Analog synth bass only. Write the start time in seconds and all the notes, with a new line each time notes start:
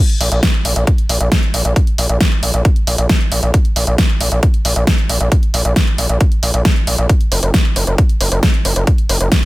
0.21 A#1
0.32 A#1
0.65 A#1
0.76 A#1
1.09 A#1
1.20 A#1
1.54 A#1
1.65 A#1
1.98 A#1
2.09 A#1
2.43 A#1
2.54 A#1
2.87 A#1
2.98 A#1
3.32 A#1
3.43 A#1
3.76 A#1
3.87 A#1
4.21 A#1
4.32 A#1
4.65 A#1
4.76 A#1
5.09 A#1
5.21 A#1
5.54 A#1
5.65 A#1
5.98 A#1
6.09 A#1
6.43 A#1
6.54 A#1
6.87 A#1
6.98 A#1
7.32 F#1
7.43 F#1
7.76 F#1
7.87 F#1
8.21 F#1
8.32 F#1
8.65 F#1
8.76 F#1
9.09 F#1
9.21 F#1